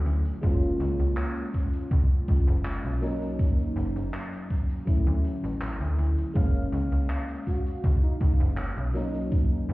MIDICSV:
0, 0, Header, 1, 5, 480
1, 0, Start_track
1, 0, Key_signature, 6, "major"
1, 0, Tempo, 740741
1, 277, Time_signature, 4, 2, 24, 8
1, 6308, End_track
2, 0, Start_track
2, 0, Title_t, "Soft synth lead"
2, 0, Program_c, 0, 80
2, 0, Note_on_c, 0, 66, 105
2, 327, Note_off_c, 0, 66, 0
2, 4836, Note_on_c, 0, 66, 100
2, 5127, Note_off_c, 0, 66, 0
2, 5201, Note_on_c, 0, 63, 94
2, 5275, Note_off_c, 0, 63, 0
2, 5317, Note_on_c, 0, 63, 79
2, 5398, Note_off_c, 0, 63, 0
2, 5798, Note_on_c, 0, 63, 97
2, 6088, Note_off_c, 0, 63, 0
2, 6308, End_track
3, 0, Start_track
3, 0, Title_t, "FM electric piano"
3, 0, Program_c, 1, 5
3, 0, Control_c, 1, 64, 127
3, 0, Note_on_c, 1, 54, 81
3, 0, Note_on_c, 1, 57, 74
3, 0, Note_on_c, 1, 61, 76
3, 0, Note_on_c, 1, 64, 89
3, 228, Note_off_c, 1, 54, 0
3, 232, Note_off_c, 1, 57, 0
3, 234, Note_off_c, 1, 61, 0
3, 238, Note_off_c, 1, 64, 0
3, 269, Note_on_c, 1, 56, 94
3, 276, Note_on_c, 1, 58, 85
3, 282, Note_on_c, 1, 61, 85
3, 287, Control_c, 1, 64, 0
3, 288, Note_on_c, 1, 65, 101
3, 383, Control_c, 1, 64, 127
3, 1907, Note_off_c, 1, 56, 0
3, 1911, Note_off_c, 1, 58, 0
3, 1914, Note_off_c, 1, 61, 0
3, 1917, Note_off_c, 1, 65, 0
3, 1947, Note_on_c, 1, 54, 94
3, 1954, Note_on_c, 1, 58, 89
3, 1960, Note_on_c, 1, 61, 88
3, 1966, Control_c, 1, 64, 0
3, 1967, Note_on_c, 1, 63, 106
3, 2076, Control_c, 1, 64, 127
3, 3107, Note_off_c, 1, 54, 0
3, 3110, Note_off_c, 1, 58, 0
3, 3113, Note_off_c, 1, 61, 0
3, 3116, Note_off_c, 1, 63, 0
3, 3145, Note_on_c, 1, 54, 78
3, 3151, Note_on_c, 1, 57, 73
3, 3157, Note_on_c, 1, 61, 73
3, 3165, Note_on_c, 1, 64, 87
3, 3166, Control_c, 1, 64, 0
3, 3273, Control_c, 1, 64, 127
3, 4065, Note_off_c, 1, 54, 0
3, 4068, Note_off_c, 1, 57, 0
3, 4072, Note_off_c, 1, 61, 0
3, 4075, Note_off_c, 1, 64, 0
3, 4106, Note_on_c, 1, 56, 93
3, 4113, Note_on_c, 1, 58, 83
3, 4118, Note_on_c, 1, 61, 84
3, 4124, Note_on_c, 1, 77, 104
3, 4125, Control_c, 1, 64, 0
3, 4234, Control_c, 1, 64, 127
3, 5746, Note_off_c, 1, 56, 0
3, 5749, Note_off_c, 1, 58, 0
3, 5752, Note_off_c, 1, 61, 0
3, 5755, Note_off_c, 1, 77, 0
3, 5789, Note_on_c, 1, 54, 95
3, 5795, Note_on_c, 1, 58, 87
3, 5801, Note_on_c, 1, 61, 86
3, 5806, Control_c, 1, 64, 0
3, 5808, Note_on_c, 1, 63, 106
3, 5926, Control_c, 1, 64, 127
3, 6308, Note_off_c, 1, 54, 0
3, 6308, Note_off_c, 1, 58, 0
3, 6308, Note_off_c, 1, 61, 0
3, 6308, Note_off_c, 1, 63, 0
3, 6308, End_track
4, 0, Start_track
4, 0, Title_t, "FM bass"
4, 0, Program_c, 2, 39
4, 36, Note_on_c, 2, 38, 90
4, 144, Note_off_c, 2, 38, 0
4, 280, Note_on_c, 2, 30, 104
4, 484, Note_off_c, 2, 30, 0
4, 516, Note_on_c, 2, 37, 100
4, 624, Note_off_c, 2, 37, 0
4, 643, Note_on_c, 2, 37, 83
4, 740, Note_off_c, 2, 37, 0
4, 1238, Note_on_c, 2, 37, 99
4, 1345, Note_off_c, 2, 37, 0
4, 1479, Note_on_c, 2, 37, 90
4, 1585, Note_off_c, 2, 37, 0
4, 1602, Note_on_c, 2, 30, 107
4, 1805, Note_off_c, 2, 30, 0
4, 1843, Note_on_c, 2, 35, 93
4, 2409, Note_off_c, 2, 35, 0
4, 2436, Note_on_c, 2, 30, 103
4, 2544, Note_off_c, 2, 30, 0
4, 2563, Note_on_c, 2, 30, 81
4, 2660, Note_off_c, 2, 30, 0
4, 3282, Note_on_c, 2, 38, 90
4, 3379, Note_off_c, 2, 38, 0
4, 3522, Note_on_c, 2, 33, 92
4, 3725, Note_off_c, 2, 33, 0
4, 3762, Note_on_c, 2, 38, 100
4, 3859, Note_off_c, 2, 38, 0
4, 3876, Note_on_c, 2, 38, 89
4, 3984, Note_off_c, 2, 38, 0
4, 4118, Note_on_c, 2, 30, 104
4, 4323, Note_off_c, 2, 30, 0
4, 4356, Note_on_c, 2, 37, 98
4, 4464, Note_off_c, 2, 37, 0
4, 4482, Note_on_c, 2, 37, 83
4, 4579, Note_off_c, 2, 37, 0
4, 5079, Note_on_c, 2, 37, 101
4, 5185, Note_off_c, 2, 37, 0
4, 5319, Note_on_c, 2, 37, 93
4, 5425, Note_off_c, 2, 37, 0
4, 5443, Note_on_c, 2, 30, 106
4, 5645, Note_off_c, 2, 30, 0
4, 5684, Note_on_c, 2, 35, 94
4, 6250, Note_off_c, 2, 35, 0
4, 6279, Note_on_c, 2, 30, 97
4, 6308, Note_off_c, 2, 30, 0
4, 6308, End_track
5, 0, Start_track
5, 0, Title_t, "Drums"
5, 38, Note_on_c, 9, 42, 92
5, 102, Note_off_c, 9, 42, 0
5, 160, Note_on_c, 9, 69, 64
5, 164, Note_on_c, 9, 42, 69
5, 225, Note_off_c, 9, 69, 0
5, 229, Note_off_c, 9, 42, 0
5, 278, Note_on_c, 9, 42, 88
5, 279, Note_on_c, 9, 36, 127
5, 279, Note_on_c, 9, 69, 57
5, 342, Note_off_c, 9, 42, 0
5, 344, Note_off_c, 9, 36, 0
5, 344, Note_off_c, 9, 69, 0
5, 403, Note_on_c, 9, 69, 45
5, 468, Note_off_c, 9, 69, 0
5, 519, Note_on_c, 9, 42, 92
5, 584, Note_off_c, 9, 42, 0
5, 643, Note_on_c, 9, 69, 73
5, 645, Note_on_c, 9, 42, 66
5, 708, Note_off_c, 9, 69, 0
5, 710, Note_off_c, 9, 42, 0
5, 755, Note_on_c, 9, 69, 67
5, 757, Note_on_c, 9, 39, 127
5, 759, Note_on_c, 9, 42, 89
5, 820, Note_off_c, 9, 69, 0
5, 822, Note_off_c, 9, 39, 0
5, 823, Note_off_c, 9, 42, 0
5, 880, Note_on_c, 9, 42, 52
5, 890, Note_on_c, 9, 69, 48
5, 945, Note_off_c, 9, 42, 0
5, 955, Note_off_c, 9, 69, 0
5, 999, Note_on_c, 9, 36, 67
5, 999, Note_on_c, 9, 42, 99
5, 1064, Note_off_c, 9, 36, 0
5, 1064, Note_off_c, 9, 42, 0
5, 1121, Note_on_c, 9, 69, 71
5, 1122, Note_on_c, 9, 42, 71
5, 1186, Note_off_c, 9, 42, 0
5, 1186, Note_off_c, 9, 69, 0
5, 1238, Note_on_c, 9, 69, 62
5, 1239, Note_on_c, 9, 36, 127
5, 1239, Note_on_c, 9, 42, 88
5, 1303, Note_off_c, 9, 36, 0
5, 1303, Note_off_c, 9, 42, 0
5, 1303, Note_off_c, 9, 69, 0
5, 1364, Note_on_c, 9, 69, 42
5, 1429, Note_off_c, 9, 69, 0
5, 1479, Note_on_c, 9, 36, 115
5, 1480, Note_on_c, 9, 42, 98
5, 1543, Note_off_c, 9, 36, 0
5, 1545, Note_off_c, 9, 42, 0
5, 1602, Note_on_c, 9, 42, 66
5, 1602, Note_on_c, 9, 69, 73
5, 1667, Note_off_c, 9, 42, 0
5, 1667, Note_off_c, 9, 69, 0
5, 1717, Note_on_c, 9, 39, 120
5, 1718, Note_on_c, 9, 42, 92
5, 1782, Note_off_c, 9, 39, 0
5, 1782, Note_off_c, 9, 42, 0
5, 1846, Note_on_c, 9, 69, 46
5, 1910, Note_off_c, 9, 69, 0
5, 1958, Note_on_c, 9, 42, 96
5, 2022, Note_off_c, 9, 42, 0
5, 2085, Note_on_c, 9, 69, 68
5, 2086, Note_on_c, 9, 42, 72
5, 2150, Note_off_c, 9, 69, 0
5, 2151, Note_off_c, 9, 42, 0
5, 2197, Note_on_c, 9, 69, 62
5, 2199, Note_on_c, 9, 36, 127
5, 2199, Note_on_c, 9, 42, 94
5, 2262, Note_off_c, 9, 69, 0
5, 2263, Note_off_c, 9, 36, 0
5, 2264, Note_off_c, 9, 42, 0
5, 2323, Note_on_c, 9, 42, 53
5, 2324, Note_on_c, 9, 69, 43
5, 2388, Note_off_c, 9, 42, 0
5, 2389, Note_off_c, 9, 69, 0
5, 2439, Note_on_c, 9, 42, 85
5, 2504, Note_off_c, 9, 42, 0
5, 2566, Note_on_c, 9, 69, 64
5, 2569, Note_on_c, 9, 42, 60
5, 2631, Note_off_c, 9, 69, 0
5, 2634, Note_off_c, 9, 42, 0
5, 2675, Note_on_c, 9, 69, 60
5, 2680, Note_on_c, 9, 42, 87
5, 2682, Note_on_c, 9, 39, 127
5, 2740, Note_off_c, 9, 69, 0
5, 2745, Note_off_c, 9, 42, 0
5, 2747, Note_off_c, 9, 39, 0
5, 2803, Note_on_c, 9, 69, 45
5, 2804, Note_on_c, 9, 42, 55
5, 2867, Note_off_c, 9, 69, 0
5, 2869, Note_off_c, 9, 42, 0
5, 2916, Note_on_c, 9, 42, 82
5, 2918, Note_on_c, 9, 36, 66
5, 2981, Note_off_c, 9, 42, 0
5, 2983, Note_off_c, 9, 36, 0
5, 3041, Note_on_c, 9, 42, 62
5, 3045, Note_on_c, 9, 69, 70
5, 3106, Note_off_c, 9, 42, 0
5, 3110, Note_off_c, 9, 69, 0
5, 3156, Note_on_c, 9, 42, 81
5, 3156, Note_on_c, 9, 69, 55
5, 3158, Note_on_c, 9, 36, 122
5, 3221, Note_off_c, 9, 42, 0
5, 3221, Note_off_c, 9, 69, 0
5, 3223, Note_off_c, 9, 36, 0
5, 3283, Note_on_c, 9, 69, 47
5, 3348, Note_off_c, 9, 69, 0
5, 3398, Note_on_c, 9, 42, 81
5, 3462, Note_off_c, 9, 42, 0
5, 3528, Note_on_c, 9, 69, 64
5, 3530, Note_on_c, 9, 42, 70
5, 3593, Note_off_c, 9, 69, 0
5, 3594, Note_off_c, 9, 42, 0
5, 3634, Note_on_c, 9, 69, 56
5, 3638, Note_on_c, 9, 39, 113
5, 3639, Note_on_c, 9, 42, 94
5, 3698, Note_off_c, 9, 69, 0
5, 3703, Note_off_c, 9, 39, 0
5, 3704, Note_off_c, 9, 42, 0
5, 3763, Note_on_c, 9, 69, 45
5, 3828, Note_off_c, 9, 69, 0
5, 3878, Note_on_c, 9, 42, 83
5, 3943, Note_off_c, 9, 42, 0
5, 4003, Note_on_c, 9, 69, 64
5, 4004, Note_on_c, 9, 42, 62
5, 4068, Note_off_c, 9, 42, 0
5, 4068, Note_off_c, 9, 69, 0
5, 4118, Note_on_c, 9, 36, 124
5, 4118, Note_on_c, 9, 42, 80
5, 4119, Note_on_c, 9, 69, 63
5, 4183, Note_off_c, 9, 36, 0
5, 4183, Note_off_c, 9, 42, 0
5, 4184, Note_off_c, 9, 69, 0
5, 4245, Note_on_c, 9, 69, 50
5, 4310, Note_off_c, 9, 69, 0
5, 4356, Note_on_c, 9, 42, 90
5, 4421, Note_off_c, 9, 42, 0
5, 4483, Note_on_c, 9, 69, 72
5, 4486, Note_on_c, 9, 42, 67
5, 4548, Note_off_c, 9, 69, 0
5, 4551, Note_off_c, 9, 42, 0
5, 4598, Note_on_c, 9, 42, 96
5, 4599, Note_on_c, 9, 39, 117
5, 4599, Note_on_c, 9, 69, 58
5, 4663, Note_off_c, 9, 42, 0
5, 4664, Note_off_c, 9, 39, 0
5, 4664, Note_off_c, 9, 69, 0
5, 4719, Note_on_c, 9, 42, 59
5, 4723, Note_on_c, 9, 69, 48
5, 4784, Note_off_c, 9, 42, 0
5, 4787, Note_off_c, 9, 69, 0
5, 4839, Note_on_c, 9, 36, 61
5, 4842, Note_on_c, 9, 42, 90
5, 4904, Note_off_c, 9, 36, 0
5, 4907, Note_off_c, 9, 42, 0
5, 4966, Note_on_c, 9, 42, 64
5, 4967, Note_on_c, 9, 69, 67
5, 5031, Note_off_c, 9, 42, 0
5, 5031, Note_off_c, 9, 69, 0
5, 5079, Note_on_c, 9, 36, 116
5, 5081, Note_on_c, 9, 42, 86
5, 5082, Note_on_c, 9, 69, 61
5, 5144, Note_off_c, 9, 36, 0
5, 5146, Note_off_c, 9, 42, 0
5, 5146, Note_off_c, 9, 69, 0
5, 5206, Note_on_c, 9, 69, 47
5, 5271, Note_off_c, 9, 69, 0
5, 5315, Note_on_c, 9, 42, 86
5, 5319, Note_on_c, 9, 36, 110
5, 5379, Note_off_c, 9, 42, 0
5, 5384, Note_off_c, 9, 36, 0
5, 5448, Note_on_c, 9, 69, 68
5, 5449, Note_on_c, 9, 42, 65
5, 5513, Note_off_c, 9, 69, 0
5, 5514, Note_off_c, 9, 42, 0
5, 5555, Note_on_c, 9, 39, 120
5, 5558, Note_on_c, 9, 42, 87
5, 5559, Note_on_c, 9, 69, 53
5, 5619, Note_off_c, 9, 39, 0
5, 5623, Note_off_c, 9, 42, 0
5, 5624, Note_off_c, 9, 69, 0
5, 5679, Note_on_c, 9, 69, 43
5, 5744, Note_off_c, 9, 69, 0
5, 5800, Note_on_c, 9, 42, 86
5, 5864, Note_off_c, 9, 42, 0
5, 5926, Note_on_c, 9, 42, 71
5, 5926, Note_on_c, 9, 69, 66
5, 5990, Note_off_c, 9, 69, 0
5, 5991, Note_off_c, 9, 42, 0
5, 6035, Note_on_c, 9, 42, 88
5, 6039, Note_on_c, 9, 36, 120
5, 6039, Note_on_c, 9, 69, 62
5, 6100, Note_off_c, 9, 42, 0
5, 6103, Note_off_c, 9, 69, 0
5, 6104, Note_off_c, 9, 36, 0
5, 6164, Note_on_c, 9, 69, 46
5, 6229, Note_off_c, 9, 69, 0
5, 6283, Note_on_c, 9, 42, 80
5, 6308, Note_off_c, 9, 42, 0
5, 6308, End_track
0, 0, End_of_file